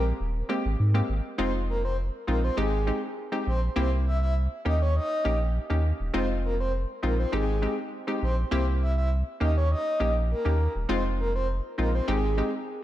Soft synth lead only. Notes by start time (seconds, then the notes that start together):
1.40 C5
1.69 A#4
1.85 C5
2.29 A#4
2.44 C5
2.59 G#4
3.48 C5
3.77 C5
4.07 E5
4.23 E5
4.67 D#5
4.82 C#5
4.96 D#5
6.15 C5
6.45 A#4
6.60 C5
7.04 A#4
7.20 C5
7.34 G#4
8.23 C5
8.53 C5
8.82 E5
8.98 E5
9.42 D#5
9.57 C#5
9.72 D#5
10.31 A#4
10.90 C5
11.20 A#4
11.35 C5
11.79 A#4
11.95 C5
12.09 G#4